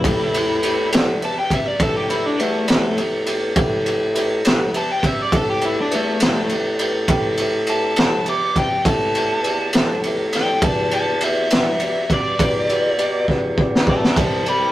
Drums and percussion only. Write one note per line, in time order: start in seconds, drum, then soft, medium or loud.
0.04 kick loud
0.04 ride medium
0.34 ride medium
0.63 ride medium
0.92 snare loud
0.92 ride medium
1.22 ride medium
1.50 kick medium
1.50 ride medium
1.80 kick loud
1.80 ride medium
2.10 ride medium
2.39 ride medium
2.68 snare loud
2.68 ride medium
2.98 ride medium
3.26 ride medium
3.56 kick loud
3.56 ride medium
3.86 ride medium
4.15 ride medium
4.45 snare loud
4.45 ride medium
4.74 ride medium
5.03 kick medium
5.03 ride medium
5.32 kick loud
5.32 ride medium
5.61 ride medium
5.91 ride medium
6.20 snare loud
6.20 ride medium
6.49 ride medium
6.79 ride medium
7.08 kick loud
7.08 ride medium
7.37 ride medium
7.67 ride medium
7.96 snare loud
7.96 ride medium
8.26 ride medium
8.56 kick medium
8.56 ride medium
8.85 kick loud
8.85 ride medium
9.15 ride medium
9.44 ride medium
9.73 snare loud
9.73 ride medium
10.03 ride medium
10.32 snare soft
10.32 ride medium
10.62 kick loud
10.62 ride medium
10.91 ride medium
11.21 ride medium
11.50 snare loud
11.50 ride medium
11.80 ride medium
12.10 kick medium
12.10 ride medium
12.39 kick loud
12.39 ride medium
12.69 ride medium
12.98 ride medium
13.28 kick medium
13.58 kick medium
13.75 snare medium
13.87 kick medium
14.04 snare medium
14.16 kick loud
14.16 ride medium
14.46 ride medium